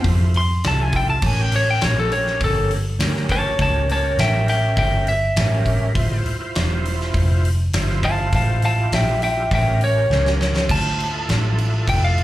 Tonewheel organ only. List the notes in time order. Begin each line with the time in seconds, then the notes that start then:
Already playing: E4 F4 C5
0.64 E4 F4 A4
1.22 C#4 G4 A#4
1.68 C#4 G4 A#4
2.99 C#4 G4 A#4
3.59 C#4 G4 A#4
4.02 C#4 G4 A#4
5.37 C#4 G4 A#4
5.94 E4 F4 C5
6.39 E4 F4 C5
7.75 E4 F4 C5
8.33 E4 F4 C5
8.75 E4 F4 G4
9.51 C#4 G4 A#4
10.10 C#4 G4 A#4
10.68 E4 F4 C5
11.11 E4 F4 A4